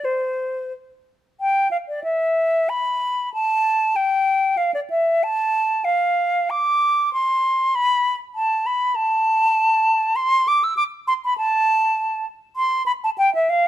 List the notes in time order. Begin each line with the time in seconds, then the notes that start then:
0.05 C5
1.41 G5
1.71 F5
1.89 D5
2.04 E5
2.69 B5
3.34 A5
3.96 G5
4.57 F5
4.74 D5
4.90 E5
5.23 A5
5.85 F5
6.50 D6
7.13 C6
7.75 B5
8.35 A5
8.66 B5
8.95 A5
10.16 C6
10.48 D6
10.64 E6
10.77 D6
11.08 C6
11.25 B5
11.38 A5
12.56 C6
12.86 B5
13.04 A5
13.18 G5
13.35 E5
13.49 F5